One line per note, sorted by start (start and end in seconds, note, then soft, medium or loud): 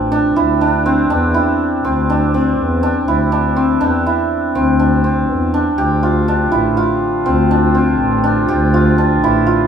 0.00 0.30 A1 medium
0.00 0.85 C4 medium
0.00 0.11 D4 medium
0.00 0.42 F4 medium
0.00 0.79 G4 medium
0.12 0.61 D4 medium
0.36 1.01 D2 medium
0.36 1.34 E4 medium
0.61 1.10 D4 medium
0.86 1.84 C4 medium
1.10 1.32 E2 medium
1.10 2.09 D4 medium
1.34 3.08 E4 medium
1.84 2.49 D2 medium
1.84 2.34 C4 medium
2.10 2.82 D4 medium
2.34 3.56 C4 medium
2.59 3.02 E2 medium
2.83 3.32 D4 medium
3.08 3.72 D2 medium
3.08 4.06 E4 medium
3.32 3.80 D4 medium
3.56 4.55 C4 medium
3.81 4.03 E2 medium
3.81 4.79 D4 medium
4.06 6.09 E4 medium
4.55 5.20 D2 medium
4.55 5.04 C4 medium
4.79 5.53 D4 medium
5.04 7.25 C4 medium
5.29 5.72 E2 medium
5.54 6.28 D4 medium
5.78 6.43 D2 medium
5.78 9.67 D3 medium
5.78 9.67 C4 medium
5.78 9.67 F4 medium
5.78 8.48 G4 medium
6.03 6.58 F4 medium
6.28 7.50 D4 medium
6.52 6.74 A1 medium
6.52 6.83 E4 medium
6.77 8.73 F4 medium
7.25 7.90 D2 medium
7.25 7.74 C4 medium
7.51 8.23 D4 medium
7.75 9.67 C4 medium
8.00 8.43 A1 medium
8.24 8.98 D4 medium
8.48 9.13 D2 medium
8.48 9.67 G4 medium
8.74 9.30 F4 medium
8.98 9.67 D4 medium
9.22 9.44 A1 medium
9.22 9.53 E4 medium
9.47 9.67 F4 medium